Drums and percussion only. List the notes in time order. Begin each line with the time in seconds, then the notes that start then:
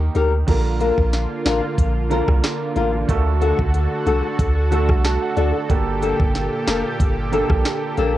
0.15 closed hi-hat
0.48 kick, closed hi-hat, crash
0.81 closed hi-hat
0.98 kick
1.13 snare, closed hi-hat
1.46 cross-stick, snare, closed hi-hat
1.78 kick, closed hi-hat
2.11 closed hi-hat
2.28 kick, cross-stick
2.44 cross-stick, snare, closed hi-hat
2.76 closed hi-hat
3.09 kick, closed hi-hat
3.41 closed hi-hat
3.59 kick
3.74 closed hi-hat
4.07 closed hi-hat
4.39 kick, closed hi-hat
4.72 closed hi-hat
4.89 kick, cross-stick
5.04 cross-stick, snare, closed hi-hat
5.37 closed hi-hat
5.70 kick, closed hi-hat
6.02 closed hi-hat
6.20 kick
6.35 snare, closed hi-hat
6.67 cross-stick, snare, closed hi-hat
7.00 kick, closed hi-hat
7.33 closed hi-hat
7.50 kick, cross-stick
7.65 cross-stick, snare, closed hi-hat
7.97 closed hi-hat